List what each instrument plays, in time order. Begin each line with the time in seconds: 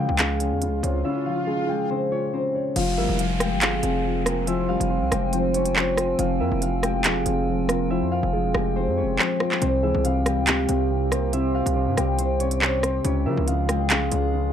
Already playing: grand piano C#3 F3 G#3, harp C#4 F4 C#5 F5 G5, swell
0.00 harp G4
0.09 808-style bass C#2
0.19 grand piano C#3, harp F4 F5, soft synth lead G#4, clap, closed hi-hat
0.40 grand piano C#4, closed hi-hat
0.52 808-style bass E2
0.62 grand piano C#3, closed hi-hat
0.67 808-style bass C#2
0.83 808-style bass C#2, soft synth lead C5, grand piano C#5, closed hi-hat
1.05 grand piano C#3, harp E4 E5, soft synth lead C#5
1.26 grand piano F3, harp F4 F5
1.47 grand piano C#3, soft synth lead G#4
1.69 grand piano G#3, harp G4 G5
1.90 grand piano C#3, harp C4 C5
2.11 harp C#4 C#5, grand piano F4
2.33 grand piano C#3, harp C4 C5
2.55 grand piano C#5
2.76 808-style bass F1, ambient pad F3 C4 G5 G#5, grand piano F3, harp F4 F5, closed hi-hat, crash, downlifter
2.97 808-style bass G1, grand piano G3, harp E4 E5, soft synth lead A#4
3.09 808-style bass F1
3.19 grand piano F3, harp F4 F5, closed hi-hat
3.40 grand piano G#3, harp G4 G5, cross-stick, closed hi-hat
3.52 808-style bass G1
3.61 grand piano F3, harp F4 F5, soft synth lead G#4, clap, closed hi-hat
3.83 808-style bass F1, grand piano C4, closed hi-hat
4.04 grand piano F3
4.26 grand piano F4, soft synth lead A#4, cross-stick, closed hi-hat
4.47 grand piano F3, harp E4 E5, soft synth lead C5, closed hi-hat
4.69 grand piano G3, harp F4 F5
4.80 808-style bass F1, closed hi-hat
4.90 grand piano F3, soft synth lead C5
5.02 808-style bass C2
5.11 808-style bass F1, grand piano G#3, harp G4 G5, cross-stick, closed hi-hat
5.33 grand piano F3, harp C4 C5, closed hi-hat
5.54 grand piano C4, harp C#4 C#5, closed hi-hat
5.65 closed hi-hat
5.75 grand piano F3, harp C4 C5, soft synth lead C#5, clap
5.97 grand piano F4, soft synth lead C5, cross-stick, closed hi-hat
6.19 808-style bass F1, grand piano F3, harp F4 F5, closed hi-hat
6.40 808-style bass F2, harp E4 E5, soft synth lead A#4
6.52 808-style bass F1
6.62 grand piano F3, harp F4 F5, closed hi-hat
6.83 grand piano G#3, harp G4 G5, cross-stick, closed hi-hat
7.04 808-style bass E1, grand piano F3, harp F4, soft synth lead G#4, clap, closed hi-hat
7.16 808-style bass F1
7.26 808-style bass F1, grand piano C4, closed hi-hat
7.48 grand piano F3
7.69 grand piano F4, soft synth lead A#4, cross-stick, closed hi-hat
7.90 grand piano F3, harp E4 E5, soft synth lead C5
8.02 808-style bass F2
8.12 harp F4 F5
8.23 808-style bass F1
8.33 grand piano F3, soft synth lead G#4
8.45 808-style bass E1
8.54 808-style bass F1, grand piano G#3, harp G4 G5, cross-stick
8.76 grand piano F3, harp C4 C5
8.87 808-style bass F2
8.97 grand piano C4, harp C#4 C#5
9.03 808-style bass F1
9.19 grand piano F3, harp C4 C5, clap
9.40 grand piano F4, cross-stick
9.52 clap
9.62 808-style bass C2, grand piano C3, ambient pad C3 C4 G4, harp C4 C5, closed hi-hat
9.83 808-style bass C#2, grand piano E3, harp E4 E5, soft synth lead G#4
9.95 808-style bass C2
10.05 grand piano C3, harp F4 F5, closed hi-hat
10.26 grand piano G3, harp G4 G5, cross-stick, closed hi-hat
10.37 808-style bass C#2
10.47 grand piano C3, harp F4, soft synth lead G4, clap, closed hi-hat
10.69 808-style bass C2, grand piano C4, closed hi-hat
10.91 grand piano C3
11.12 soft synth lead A#4, grand piano C5, cross-stick, closed hi-hat
11.33 grand piano C3, harp E4 E5, soft synth lead C5, closed hi-hat
11.55 harp F4 F5
11.66 808-style bass C2, closed hi-hat
11.76 grand piano C3, soft synth lead C5
11.87 808-style bass G2
11.97 808-style bass C2, grand piano G3, harp G4 G5, cross-stick, closed hi-hat
12.19 grand piano C3, harp C4 C5, closed hi-hat
12.40 grand piano C4, harp C#4 C#5, closed hi-hat
12.51 closed hi-hat
12.61 grand piano C3, harp C4 C5, soft synth lead C#5, clap
12.83 grand piano C5, soft synth lead C5, cross-stick, closed hi-hat
13.04 808-style bass C#2, grand piano C#3, ambient pad C#3 G#3 F4 G#4, harp C#4 C#5, closed hi-hat
13.25 808-style bass C#3, grand piano F3, harp E4 E5, soft synth lead A#4
13.37 808-style bass C#2
13.47 grand piano C#3, harp F4 F5, closed hi-hat
13.69 grand piano G#3, harp G4 G5, cross-stick, closed hi-hat
13.90 808-style bass C2, grand piano C#3, harp F4 F5, soft synth lead G#4, clap, closed hi-hat
14.02 808-style bass C#2
14.12 808-style bass C#2, grand piano C#4, closed hi-hat
14.33 grand piano C#3